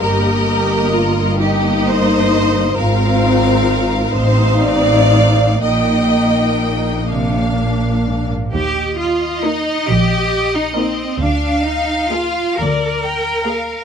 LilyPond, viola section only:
\new Staff \with { instrumentName = "Viola section" } { \time 6/8 \key ees \major \tempo 4. = 44 << { g'8 g'8 f'8 ees'4. | f'4. ees'4. | ees'4. d'4. | r4 ees'8 r4 ees'8 |
r4 aes'8 r4 aes'8 | } \\ { bes4. bes4. | c'4. c'4. | bes4. bes4. | r4 bes8 r4 bes8 |
r4 bes8 r4 bes8 | } >> }